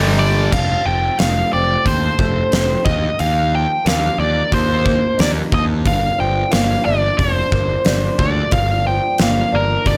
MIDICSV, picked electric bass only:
0, 0, Header, 1, 2, 480
1, 0, Start_track
1, 0, Key_signature, -2, "minor"
1, 0, Tempo, 666667
1, 372, Time_signature, 4, 2, 24, 8
1, 7178, End_track
2, 0, Start_track
2, 0, Title_t, "Picked electric bass"
2, 0, Program_c, 0, 34
2, 0, Note_on_c, 0, 31, 83
2, 348, Note_off_c, 0, 31, 0
2, 377, Note_on_c, 0, 29, 81
2, 539, Note_off_c, 0, 29, 0
2, 621, Note_on_c, 0, 29, 78
2, 781, Note_off_c, 0, 29, 0
2, 863, Note_on_c, 0, 29, 82
2, 1022, Note_off_c, 0, 29, 0
2, 1107, Note_on_c, 0, 29, 72
2, 1265, Note_off_c, 0, 29, 0
2, 1337, Note_on_c, 0, 39, 76
2, 1498, Note_off_c, 0, 39, 0
2, 1578, Note_on_c, 0, 29, 77
2, 1739, Note_off_c, 0, 29, 0
2, 1821, Note_on_c, 0, 29, 71
2, 1981, Note_off_c, 0, 29, 0
2, 2060, Note_on_c, 0, 39, 74
2, 2221, Note_off_c, 0, 39, 0
2, 2306, Note_on_c, 0, 39, 84
2, 2629, Note_off_c, 0, 39, 0
2, 2780, Note_on_c, 0, 39, 77
2, 2941, Note_off_c, 0, 39, 0
2, 3013, Note_on_c, 0, 39, 75
2, 3177, Note_off_c, 0, 39, 0
2, 3256, Note_on_c, 0, 39, 76
2, 3583, Note_off_c, 0, 39, 0
2, 3738, Note_on_c, 0, 39, 76
2, 3900, Note_off_c, 0, 39, 0
2, 3978, Note_on_c, 0, 39, 88
2, 4218, Note_on_c, 0, 31, 88
2, 4229, Note_off_c, 0, 39, 0
2, 4380, Note_off_c, 0, 31, 0
2, 4462, Note_on_c, 0, 31, 70
2, 4623, Note_off_c, 0, 31, 0
2, 4702, Note_on_c, 0, 31, 83
2, 4863, Note_off_c, 0, 31, 0
2, 4946, Note_on_c, 0, 31, 76
2, 5106, Note_off_c, 0, 31, 0
2, 5176, Note_on_c, 0, 29, 84
2, 5339, Note_off_c, 0, 29, 0
2, 5415, Note_on_c, 0, 31, 77
2, 5579, Note_off_c, 0, 31, 0
2, 5658, Note_on_c, 0, 31, 73
2, 5821, Note_off_c, 0, 31, 0
2, 5897, Note_on_c, 0, 38, 83
2, 6060, Note_off_c, 0, 38, 0
2, 6139, Note_on_c, 0, 31, 83
2, 6466, Note_off_c, 0, 31, 0
2, 6622, Note_on_c, 0, 31, 74
2, 6784, Note_off_c, 0, 31, 0
2, 6867, Note_on_c, 0, 31, 74
2, 7027, Note_off_c, 0, 31, 0
2, 7096, Note_on_c, 0, 31, 76
2, 7178, Note_off_c, 0, 31, 0
2, 7178, End_track
0, 0, End_of_file